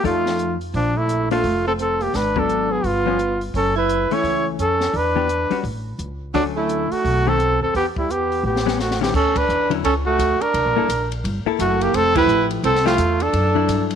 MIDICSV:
0, 0, Header, 1, 7, 480
1, 0, Start_track
1, 0, Tempo, 349854
1, 1010, Time_signature, 4, 2, 24, 8
1, 19144, End_track
2, 0, Start_track
2, 0, Title_t, "Trumpet"
2, 0, Program_c, 0, 56
2, 86, Note_on_c, 0, 65, 69
2, 794, Note_off_c, 0, 65, 0
2, 1039, Note_on_c, 0, 62, 72
2, 1338, Note_on_c, 0, 64, 70
2, 1358, Note_off_c, 0, 62, 0
2, 1797, Note_off_c, 0, 64, 0
2, 1805, Note_on_c, 0, 65, 77
2, 2245, Note_off_c, 0, 65, 0
2, 2303, Note_on_c, 0, 69, 71
2, 2377, Note_off_c, 0, 69, 0
2, 2489, Note_on_c, 0, 69, 73
2, 2776, Note_on_c, 0, 67, 64
2, 2796, Note_off_c, 0, 69, 0
2, 2963, Note_on_c, 0, 71, 76
2, 2984, Note_off_c, 0, 67, 0
2, 3284, Note_on_c, 0, 69, 72
2, 3304, Note_off_c, 0, 71, 0
2, 3731, Note_on_c, 0, 68, 72
2, 3752, Note_off_c, 0, 69, 0
2, 3927, Note_on_c, 0, 65, 72
2, 3948, Note_off_c, 0, 68, 0
2, 4690, Note_off_c, 0, 65, 0
2, 4896, Note_on_c, 0, 69, 84
2, 5155, Note_off_c, 0, 69, 0
2, 5185, Note_on_c, 0, 71, 71
2, 5669, Note_on_c, 0, 73, 80
2, 5690, Note_off_c, 0, 71, 0
2, 6132, Note_off_c, 0, 73, 0
2, 6334, Note_on_c, 0, 69, 77
2, 6817, Note_on_c, 0, 71, 88
2, 6838, Note_off_c, 0, 69, 0
2, 7757, Note_off_c, 0, 71, 0
2, 8707, Note_on_c, 0, 62, 78
2, 8840, Note_off_c, 0, 62, 0
2, 9018, Note_on_c, 0, 64, 70
2, 9495, Note_on_c, 0, 66, 91
2, 9516, Note_off_c, 0, 64, 0
2, 9995, Note_on_c, 0, 69, 92
2, 10016, Note_off_c, 0, 66, 0
2, 10457, Note_off_c, 0, 69, 0
2, 10463, Note_on_c, 0, 69, 69
2, 10620, Note_off_c, 0, 69, 0
2, 10647, Note_on_c, 0, 67, 82
2, 10776, Note_off_c, 0, 67, 0
2, 10949, Note_on_c, 0, 64, 66
2, 11130, Note_on_c, 0, 67, 78
2, 11151, Note_off_c, 0, 64, 0
2, 11595, Note_off_c, 0, 67, 0
2, 11609, Note_on_c, 0, 67, 60
2, 12041, Note_off_c, 0, 67, 0
2, 12091, Note_on_c, 0, 66, 64
2, 12354, Note_off_c, 0, 66, 0
2, 12384, Note_on_c, 0, 67, 55
2, 12540, Note_off_c, 0, 67, 0
2, 12561, Note_on_c, 0, 69, 82
2, 12862, Note_on_c, 0, 71, 87
2, 12882, Note_off_c, 0, 69, 0
2, 13329, Note_off_c, 0, 71, 0
2, 13509, Note_on_c, 0, 69, 72
2, 13641, Note_off_c, 0, 69, 0
2, 13801, Note_on_c, 0, 66, 86
2, 14296, Note_on_c, 0, 70, 81
2, 14316, Note_off_c, 0, 66, 0
2, 15244, Note_off_c, 0, 70, 0
2, 15927, Note_on_c, 0, 66, 82
2, 16228, Note_on_c, 0, 67, 84
2, 16249, Note_off_c, 0, 66, 0
2, 16412, Note_on_c, 0, 69, 107
2, 16432, Note_off_c, 0, 67, 0
2, 16690, Note_off_c, 0, 69, 0
2, 16705, Note_on_c, 0, 71, 95
2, 17135, Note_off_c, 0, 71, 0
2, 17364, Note_on_c, 0, 69, 91
2, 17626, Note_off_c, 0, 69, 0
2, 17656, Note_on_c, 0, 65, 86
2, 18146, Note_on_c, 0, 69, 74
2, 18166, Note_off_c, 0, 65, 0
2, 19085, Note_off_c, 0, 69, 0
2, 19144, End_track
3, 0, Start_track
3, 0, Title_t, "Hollow-body jazz guitar"
3, 0, Program_c, 1, 26
3, 52, Note_on_c, 1, 53, 41
3, 62, Note_on_c, 1, 63, 44
3, 67, Note_on_c, 1, 69, 45
3, 70, Note_on_c, 1, 74, 37
3, 771, Note_off_c, 1, 53, 0
3, 776, Note_off_c, 1, 63, 0
3, 778, Note_off_c, 1, 69, 0
3, 780, Note_off_c, 1, 74, 0
3, 1802, Note_on_c, 1, 58, 45
3, 1808, Note_on_c, 1, 62, 45
3, 1813, Note_on_c, 1, 69, 48
3, 1819, Note_on_c, 1, 72, 45
3, 1959, Note_off_c, 1, 58, 0
3, 1962, Note_off_c, 1, 62, 0
3, 1965, Note_off_c, 1, 69, 0
3, 1968, Note_off_c, 1, 72, 0
3, 3243, Note_on_c, 1, 54, 52
3, 3248, Note_on_c, 1, 59, 51
3, 3261, Note_on_c, 1, 62, 48
3, 3863, Note_off_c, 1, 54, 0
3, 3865, Note_off_c, 1, 59, 0
3, 3872, Note_off_c, 1, 62, 0
3, 4197, Note_on_c, 1, 53, 54
3, 4211, Note_on_c, 1, 59, 57
3, 4219, Note_on_c, 1, 61, 66
3, 4358, Note_off_c, 1, 53, 0
3, 4365, Note_off_c, 1, 59, 0
3, 4369, Note_off_c, 1, 61, 0
3, 5645, Note_on_c, 1, 52, 49
3, 5652, Note_on_c, 1, 57, 54
3, 5667, Note_on_c, 1, 61, 57
3, 6265, Note_off_c, 1, 52, 0
3, 6269, Note_off_c, 1, 57, 0
3, 6276, Note_off_c, 1, 61, 0
3, 7074, Note_on_c, 1, 52, 49
3, 7082, Note_on_c, 1, 59, 43
3, 7084, Note_on_c, 1, 62, 48
3, 7089, Note_on_c, 1, 67, 50
3, 7238, Note_off_c, 1, 52, 0
3, 7242, Note_off_c, 1, 59, 0
3, 7243, Note_off_c, 1, 62, 0
3, 7245, Note_off_c, 1, 67, 0
3, 7551, Note_on_c, 1, 55, 45
3, 7567, Note_on_c, 1, 61, 49
3, 7573, Note_on_c, 1, 66, 58
3, 7716, Note_off_c, 1, 55, 0
3, 7724, Note_off_c, 1, 61, 0
3, 7728, Note_off_c, 1, 66, 0
3, 8704, Note_on_c, 1, 50, 41
3, 8709, Note_on_c, 1, 54, 35
3, 8717, Note_on_c, 1, 57, 47
3, 8719, Note_on_c, 1, 61, 50
3, 9421, Note_off_c, 1, 50, 0
3, 9423, Note_off_c, 1, 54, 0
3, 9427, Note_off_c, 1, 57, 0
3, 9428, Note_off_c, 1, 61, 0
3, 9970, Note_on_c, 1, 51, 55
3, 9977, Note_on_c, 1, 57, 64
3, 9992, Note_on_c, 1, 60, 62
3, 10127, Note_off_c, 1, 51, 0
3, 10130, Note_off_c, 1, 57, 0
3, 10138, Note_off_c, 1, 60, 0
3, 11884, Note_on_c, 1, 55, 52
3, 11889, Note_on_c, 1, 59, 68
3, 11897, Note_on_c, 1, 61, 68
3, 12044, Note_off_c, 1, 55, 0
3, 12046, Note_off_c, 1, 59, 0
3, 12051, Note_off_c, 1, 61, 0
3, 12358, Note_on_c, 1, 50, 38
3, 12366, Note_on_c, 1, 61, 44
3, 12367, Note_on_c, 1, 54, 43
3, 12373, Note_on_c, 1, 64, 40
3, 12521, Note_off_c, 1, 50, 0
3, 12525, Note_off_c, 1, 54, 0
3, 12525, Note_off_c, 1, 61, 0
3, 12528, Note_off_c, 1, 64, 0
3, 13310, Note_on_c, 1, 50, 45
3, 13311, Note_on_c, 1, 54, 57
3, 13322, Note_on_c, 1, 64, 51
3, 13324, Note_on_c, 1, 61, 58
3, 13476, Note_off_c, 1, 50, 0
3, 13477, Note_off_c, 1, 54, 0
3, 13482, Note_off_c, 1, 64, 0
3, 13483, Note_off_c, 1, 61, 0
3, 14768, Note_on_c, 1, 58, 56
3, 14779, Note_on_c, 1, 64, 56
3, 14789, Note_on_c, 1, 69, 59
3, 14924, Note_off_c, 1, 58, 0
3, 14929, Note_off_c, 1, 64, 0
3, 14934, Note_off_c, 1, 69, 0
3, 15728, Note_on_c, 1, 58, 63
3, 15734, Note_on_c, 1, 64, 72
3, 15743, Note_on_c, 1, 69, 70
3, 16344, Note_off_c, 1, 58, 0
3, 16347, Note_off_c, 1, 64, 0
3, 16352, Note_off_c, 1, 69, 0
3, 16684, Note_on_c, 1, 53, 65
3, 16694, Note_on_c, 1, 64, 71
3, 16695, Note_on_c, 1, 57, 59
3, 16698, Note_on_c, 1, 67, 72
3, 17301, Note_off_c, 1, 53, 0
3, 17306, Note_off_c, 1, 64, 0
3, 17307, Note_off_c, 1, 57, 0
3, 17308, Note_off_c, 1, 67, 0
3, 17634, Note_on_c, 1, 53, 64
3, 17640, Note_on_c, 1, 57, 67
3, 17640, Note_on_c, 1, 64, 77
3, 17655, Note_on_c, 1, 67, 82
3, 17794, Note_off_c, 1, 53, 0
3, 17797, Note_off_c, 1, 57, 0
3, 17797, Note_off_c, 1, 64, 0
3, 17804, Note_off_c, 1, 67, 0
3, 18593, Note_on_c, 1, 54, 55
3, 18600, Note_on_c, 1, 62, 67
3, 18605, Note_on_c, 1, 64, 55
3, 19144, Note_off_c, 1, 54, 0
3, 19144, Note_off_c, 1, 62, 0
3, 19144, Note_off_c, 1, 64, 0
3, 19144, End_track
4, 0, Start_track
4, 0, Title_t, "Alto saxophone"
4, 0, Program_c, 2, 65
4, 49, Note_on_c, 2, 57, 60
4, 774, Note_off_c, 2, 57, 0
4, 1022, Note_on_c, 2, 53, 59
4, 1319, Note_on_c, 2, 57, 68
4, 1339, Note_off_c, 2, 53, 0
4, 1786, Note_off_c, 2, 57, 0
4, 1794, Note_on_c, 2, 57, 68
4, 2239, Note_off_c, 2, 57, 0
4, 2288, Note_on_c, 2, 60, 59
4, 2366, Note_off_c, 2, 60, 0
4, 2457, Note_on_c, 2, 60, 60
4, 2756, Note_on_c, 2, 58, 59
4, 2776, Note_off_c, 2, 60, 0
4, 2938, Note_on_c, 2, 62, 63
4, 2958, Note_off_c, 2, 58, 0
4, 3228, Note_off_c, 2, 62, 0
4, 3228, Note_on_c, 2, 62, 69
4, 3719, Note_on_c, 2, 59, 61
4, 3740, Note_off_c, 2, 62, 0
4, 3896, Note_off_c, 2, 59, 0
4, 3896, Note_on_c, 2, 59, 64
4, 4674, Note_off_c, 2, 59, 0
4, 4872, Note_on_c, 2, 61, 60
4, 5142, Note_off_c, 2, 61, 0
4, 5154, Note_on_c, 2, 64, 72
4, 5632, Note_off_c, 2, 64, 0
4, 5632, Note_on_c, 2, 64, 71
4, 6113, Note_off_c, 2, 64, 0
4, 6290, Note_on_c, 2, 61, 61
4, 6770, Note_on_c, 2, 62, 71
4, 6791, Note_off_c, 2, 61, 0
4, 7734, Note_off_c, 2, 62, 0
4, 8693, Note_on_c, 2, 54, 61
4, 8829, Note_off_c, 2, 54, 0
4, 8994, Note_on_c, 2, 57, 67
4, 9470, Note_off_c, 2, 57, 0
4, 9470, Note_on_c, 2, 57, 69
4, 9971, Note_on_c, 2, 60, 77
4, 9991, Note_off_c, 2, 57, 0
4, 10444, Note_off_c, 2, 60, 0
4, 10451, Note_on_c, 2, 60, 57
4, 10613, Note_off_c, 2, 60, 0
4, 10646, Note_on_c, 2, 59, 65
4, 10774, Note_off_c, 2, 59, 0
4, 10945, Note_on_c, 2, 55, 61
4, 11125, Note_on_c, 2, 59, 64
4, 11146, Note_off_c, 2, 55, 0
4, 11592, Note_off_c, 2, 59, 0
4, 11616, Note_on_c, 2, 59, 56
4, 12045, Note_off_c, 2, 59, 0
4, 12083, Note_on_c, 2, 57, 55
4, 12350, Note_off_c, 2, 57, 0
4, 12381, Note_on_c, 2, 59, 53
4, 12538, Note_off_c, 2, 59, 0
4, 12558, Note_on_c, 2, 61, 79
4, 12859, Note_on_c, 2, 62, 79
4, 12880, Note_off_c, 2, 61, 0
4, 13328, Note_off_c, 2, 62, 0
4, 13509, Note_on_c, 2, 61, 77
4, 13641, Note_off_c, 2, 61, 0
4, 13809, Note_on_c, 2, 57, 73
4, 14286, Note_on_c, 2, 62, 63
4, 14307, Note_off_c, 2, 57, 0
4, 15239, Note_off_c, 2, 62, 0
4, 15900, Note_on_c, 2, 57, 68
4, 16190, Note_on_c, 2, 58, 73
4, 16210, Note_off_c, 2, 57, 0
4, 16383, Note_on_c, 2, 60, 73
4, 16404, Note_off_c, 2, 58, 0
4, 16665, Note_off_c, 2, 60, 0
4, 16673, Note_on_c, 2, 64, 94
4, 17117, Note_off_c, 2, 64, 0
4, 17349, Note_on_c, 2, 60, 75
4, 17618, Note_off_c, 2, 60, 0
4, 17645, Note_on_c, 2, 57, 69
4, 18140, Note_on_c, 2, 62, 74
4, 18161, Note_off_c, 2, 57, 0
4, 19082, Note_off_c, 2, 62, 0
4, 19144, End_track
5, 0, Start_track
5, 0, Title_t, "Upright bass"
5, 0, Program_c, 3, 32
5, 56, Note_on_c, 3, 41, 70
5, 966, Note_off_c, 3, 41, 0
5, 1010, Note_on_c, 3, 34, 70
5, 1923, Note_off_c, 3, 34, 0
5, 1972, Note_on_c, 3, 29, 68
5, 2885, Note_off_c, 3, 29, 0
5, 2929, Note_on_c, 3, 32, 62
5, 3843, Note_off_c, 3, 32, 0
5, 3893, Note_on_c, 3, 31, 70
5, 4806, Note_off_c, 3, 31, 0
5, 4855, Note_on_c, 3, 30, 64
5, 5580, Note_off_c, 3, 30, 0
5, 5813, Note_on_c, 3, 37, 67
5, 6261, Note_off_c, 3, 37, 0
5, 6293, Note_on_c, 3, 41, 60
5, 6741, Note_off_c, 3, 41, 0
5, 6769, Note_on_c, 3, 40, 65
5, 7497, Note_off_c, 3, 40, 0
5, 7730, Note_on_c, 3, 33, 74
5, 8180, Note_off_c, 3, 33, 0
5, 8213, Note_on_c, 3, 37, 69
5, 8662, Note_off_c, 3, 37, 0
5, 8697, Note_on_c, 3, 38, 66
5, 9422, Note_off_c, 3, 38, 0
5, 9666, Note_on_c, 3, 35, 73
5, 10387, Note_off_c, 3, 35, 0
5, 10435, Note_on_c, 3, 39, 58
5, 10605, Note_off_c, 3, 39, 0
5, 10627, Note_on_c, 3, 40, 58
5, 11535, Note_off_c, 3, 40, 0
5, 11571, Note_on_c, 3, 33, 74
5, 12487, Note_off_c, 3, 33, 0
5, 12538, Note_on_c, 3, 38, 64
5, 13003, Note_off_c, 3, 38, 0
5, 13016, Note_on_c, 3, 40, 78
5, 13482, Note_off_c, 3, 40, 0
5, 13498, Note_on_c, 3, 37, 77
5, 13963, Note_off_c, 3, 37, 0
5, 13977, Note_on_c, 3, 38, 79
5, 14255, Note_off_c, 3, 38, 0
5, 14462, Note_on_c, 3, 36, 81
5, 14612, Note_off_c, 3, 36, 0
5, 14612, Note_on_c, 3, 34, 53
5, 14758, Note_off_c, 3, 34, 0
5, 14766, Note_on_c, 3, 31, 48
5, 14919, Note_off_c, 3, 31, 0
5, 14938, Note_on_c, 3, 34, 65
5, 15401, Note_off_c, 3, 34, 0
5, 15422, Note_on_c, 3, 31, 84
5, 15696, Note_off_c, 3, 31, 0
5, 15900, Note_on_c, 3, 30, 78
5, 16362, Note_off_c, 3, 30, 0
5, 16377, Note_on_c, 3, 29, 73
5, 16830, Note_off_c, 3, 29, 0
5, 16839, Note_on_c, 3, 33, 83
5, 17310, Note_off_c, 3, 33, 0
5, 17335, Note_on_c, 3, 36, 81
5, 17797, Note_off_c, 3, 36, 0
5, 17809, Note_on_c, 3, 40, 80
5, 18274, Note_off_c, 3, 40, 0
5, 18291, Note_on_c, 3, 42, 73
5, 18754, Note_off_c, 3, 42, 0
5, 18775, Note_on_c, 3, 43, 77
5, 19144, Note_off_c, 3, 43, 0
5, 19144, End_track
6, 0, Start_track
6, 0, Title_t, "Muted upright bass strokes"
6, 5635, Note_on_c, 9, 29, 29
6, 5772, Note_off_c, 9, 29, 0
6, 7554, Note_on_c, 9, 29, 30
6, 7691, Note_off_c, 9, 29, 0
6, 9485, Note_on_c, 9, 29, 35
6, 9622, Note_off_c, 9, 29, 0
6, 14274, Note_on_c, 9, 29, 35
6, 14411, Note_off_c, 9, 29, 0
6, 15711, Note_on_c, 9, 29, 33
6, 15848, Note_off_c, 9, 29, 0
6, 19144, End_track
7, 0, Start_track
7, 0, Title_t, "Drums"
7, 59, Note_on_c, 9, 36, 25
7, 66, Note_on_c, 9, 46, 33
7, 196, Note_off_c, 9, 36, 0
7, 203, Note_off_c, 9, 46, 0
7, 359, Note_on_c, 9, 38, 36
7, 496, Note_off_c, 9, 38, 0
7, 535, Note_on_c, 9, 42, 35
7, 673, Note_off_c, 9, 42, 0
7, 836, Note_on_c, 9, 46, 27
7, 973, Note_off_c, 9, 46, 0
7, 1014, Note_on_c, 9, 36, 27
7, 1017, Note_on_c, 9, 46, 30
7, 1152, Note_off_c, 9, 36, 0
7, 1154, Note_off_c, 9, 46, 0
7, 1496, Note_on_c, 9, 42, 41
7, 1633, Note_off_c, 9, 42, 0
7, 1796, Note_on_c, 9, 46, 32
7, 1934, Note_off_c, 9, 46, 0
7, 1973, Note_on_c, 9, 36, 25
7, 1973, Note_on_c, 9, 46, 34
7, 2110, Note_off_c, 9, 36, 0
7, 2110, Note_off_c, 9, 46, 0
7, 2457, Note_on_c, 9, 42, 35
7, 2594, Note_off_c, 9, 42, 0
7, 2754, Note_on_c, 9, 46, 26
7, 2891, Note_off_c, 9, 46, 0
7, 2935, Note_on_c, 9, 36, 25
7, 2937, Note_on_c, 9, 38, 29
7, 2940, Note_on_c, 9, 46, 36
7, 3072, Note_off_c, 9, 36, 0
7, 3074, Note_off_c, 9, 38, 0
7, 3077, Note_off_c, 9, 46, 0
7, 3235, Note_on_c, 9, 36, 38
7, 3372, Note_off_c, 9, 36, 0
7, 3422, Note_on_c, 9, 42, 36
7, 3559, Note_off_c, 9, 42, 0
7, 3896, Note_on_c, 9, 36, 23
7, 3899, Note_on_c, 9, 46, 32
7, 4033, Note_off_c, 9, 36, 0
7, 4036, Note_off_c, 9, 46, 0
7, 4379, Note_on_c, 9, 42, 35
7, 4516, Note_off_c, 9, 42, 0
7, 4682, Note_on_c, 9, 46, 29
7, 4819, Note_off_c, 9, 46, 0
7, 4857, Note_on_c, 9, 36, 26
7, 4869, Note_on_c, 9, 46, 36
7, 4994, Note_off_c, 9, 36, 0
7, 5006, Note_off_c, 9, 46, 0
7, 5343, Note_on_c, 9, 42, 38
7, 5480, Note_off_c, 9, 42, 0
7, 5640, Note_on_c, 9, 46, 33
7, 5777, Note_off_c, 9, 46, 0
7, 5815, Note_on_c, 9, 36, 26
7, 5822, Note_on_c, 9, 46, 35
7, 5952, Note_off_c, 9, 36, 0
7, 5960, Note_off_c, 9, 46, 0
7, 6297, Note_on_c, 9, 42, 36
7, 6435, Note_off_c, 9, 42, 0
7, 6594, Note_on_c, 9, 38, 34
7, 6731, Note_off_c, 9, 38, 0
7, 6773, Note_on_c, 9, 36, 29
7, 6777, Note_on_c, 9, 46, 35
7, 6911, Note_off_c, 9, 36, 0
7, 6914, Note_off_c, 9, 46, 0
7, 7260, Note_on_c, 9, 42, 36
7, 7397, Note_off_c, 9, 42, 0
7, 7557, Note_on_c, 9, 46, 33
7, 7694, Note_off_c, 9, 46, 0
7, 7735, Note_on_c, 9, 36, 28
7, 7744, Note_on_c, 9, 46, 33
7, 7873, Note_off_c, 9, 36, 0
7, 7881, Note_off_c, 9, 46, 0
7, 8219, Note_on_c, 9, 42, 36
7, 8356, Note_off_c, 9, 42, 0
7, 8700, Note_on_c, 9, 36, 28
7, 8703, Note_on_c, 9, 46, 35
7, 8837, Note_off_c, 9, 36, 0
7, 8840, Note_off_c, 9, 46, 0
7, 9183, Note_on_c, 9, 42, 39
7, 9321, Note_off_c, 9, 42, 0
7, 9489, Note_on_c, 9, 46, 31
7, 9627, Note_off_c, 9, 46, 0
7, 9669, Note_on_c, 9, 36, 30
7, 9677, Note_on_c, 9, 46, 36
7, 9806, Note_off_c, 9, 36, 0
7, 9814, Note_off_c, 9, 46, 0
7, 10149, Note_on_c, 9, 42, 38
7, 10286, Note_off_c, 9, 42, 0
7, 10628, Note_on_c, 9, 36, 27
7, 10632, Note_on_c, 9, 46, 34
7, 10765, Note_off_c, 9, 36, 0
7, 10769, Note_off_c, 9, 46, 0
7, 10927, Note_on_c, 9, 36, 49
7, 11064, Note_off_c, 9, 36, 0
7, 11118, Note_on_c, 9, 42, 39
7, 11255, Note_off_c, 9, 42, 0
7, 11413, Note_on_c, 9, 46, 31
7, 11550, Note_off_c, 9, 46, 0
7, 11748, Note_on_c, 9, 38, 40
7, 11885, Note_off_c, 9, 38, 0
7, 11906, Note_on_c, 9, 38, 44
7, 12043, Note_off_c, 9, 38, 0
7, 12067, Note_on_c, 9, 38, 44
7, 12204, Note_off_c, 9, 38, 0
7, 12224, Note_on_c, 9, 38, 44
7, 12361, Note_off_c, 9, 38, 0
7, 12388, Note_on_c, 9, 38, 56
7, 12525, Note_off_c, 9, 38, 0
7, 12542, Note_on_c, 9, 36, 61
7, 12548, Note_on_c, 9, 49, 63
7, 12679, Note_off_c, 9, 36, 0
7, 12685, Note_off_c, 9, 49, 0
7, 12839, Note_on_c, 9, 36, 71
7, 12844, Note_on_c, 9, 51, 65
7, 12977, Note_off_c, 9, 36, 0
7, 12981, Note_off_c, 9, 51, 0
7, 13025, Note_on_c, 9, 44, 42
7, 13162, Note_off_c, 9, 44, 0
7, 13321, Note_on_c, 9, 51, 41
7, 13458, Note_off_c, 9, 51, 0
7, 13501, Note_on_c, 9, 36, 20
7, 13508, Note_on_c, 9, 51, 51
7, 13638, Note_off_c, 9, 36, 0
7, 13645, Note_off_c, 9, 51, 0
7, 13981, Note_on_c, 9, 36, 19
7, 13986, Note_on_c, 9, 44, 46
7, 13986, Note_on_c, 9, 51, 54
7, 14118, Note_off_c, 9, 36, 0
7, 14123, Note_off_c, 9, 44, 0
7, 14123, Note_off_c, 9, 51, 0
7, 14287, Note_on_c, 9, 51, 39
7, 14424, Note_off_c, 9, 51, 0
7, 14463, Note_on_c, 9, 36, 23
7, 14465, Note_on_c, 9, 51, 58
7, 14600, Note_off_c, 9, 36, 0
7, 14602, Note_off_c, 9, 51, 0
7, 14945, Note_on_c, 9, 36, 17
7, 14949, Note_on_c, 9, 44, 56
7, 14949, Note_on_c, 9, 51, 59
7, 15083, Note_off_c, 9, 36, 0
7, 15086, Note_off_c, 9, 44, 0
7, 15086, Note_off_c, 9, 51, 0
7, 15253, Note_on_c, 9, 51, 44
7, 15390, Note_off_c, 9, 51, 0
7, 15425, Note_on_c, 9, 36, 18
7, 15433, Note_on_c, 9, 51, 53
7, 15562, Note_off_c, 9, 36, 0
7, 15571, Note_off_c, 9, 51, 0
7, 15904, Note_on_c, 9, 36, 15
7, 15908, Note_on_c, 9, 44, 57
7, 15908, Note_on_c, 9, 51, 53
7, 16041, Note_off_c, 9, 36, 0
7, 16045, Note_off_c, 9, 44, 0
7, 16045, Note_off_c, 9, 51, 0
7, 16207, Note_on_c, 9, 51, 44
7, 16344, Note_off_c, 9, 51, 0
7, 16381, Note_on_c, 9, 36, 19
7, 16383, Note_on_c, 9, 51, 58
7, 16518, Note_off_c, 9, 36, 0
7, 16521, Note_off_c, 9, 51, 0
7, 16677, Note_on_c, 9, 36, 79
7, 16678, Note_on_c, 9, 51, 63
7, 16814, Note_off_c, 9, 36, 0
7, 16815, Note_off_c, 9, 51, 0
7, 16851, Note_on_c, 9, 44, 48
7, 16988, Note_off_c, 9, 44, 0
7, 17157, Note_on_c, 9, 51, 45
7, 17294, Note_off_c, 9, 51, 0
7, 17337, Note_on_c, 9, 36, 22
7, 17341, Note_on_c, 9, 51, 53
7, 17475, Note_off_c, 9, 36, 0
7, 17478, Note_off_c, 9, 51, 0
7, 17499, Note_on_c, 9, 38, 29
7, 17637, Note_off_c, 9, 38, 0
7, 17652, Note_on_c, 9, 38, 42
7, 17789, Note_off_c, 9, 38, 0
7, 17809, Note_on_c, 9, 44, 52
7, 17809, Note_on_c, 9, 51, 51
7, 17814, Note_on_c, 9, 36, 18
7, 17946, Note_off_c, 9, 44, 0
7, 17946, Note_off_c, 9, 51, 0
7, 17951, Note_off_c, 9, 36, 0
7, 18111, Note_on_c, 9, 51, 38
7, 18248, Note_off_c, 9, 51, 0
7, 18294, Note_on_c, 9, 36, 21
7, 18295, Note_on_c, 9, 51, 54
7, 18431, Note_off_c, 9, 36, 0
7, 18432, Note_off_c, 9, 51, 0
7, 18773, Note_on_c, 9, 36, 20
7, 18779, Note_on_c, 9, 44, 47
7, 18779, Note_on_c, 9, 51, 64
7, 18910, Note_off_c, 9, 36, 0
7, 18916, Note_off_c, 9, 44, 0
7, 18916, Note_off_c, 9, 51, 0
7, 19078, Note_on_c, 9, 51, 44
7, 19144, Note_off_c, 9, 51, 0
7, 19144, End_track
0, 0, End_of_file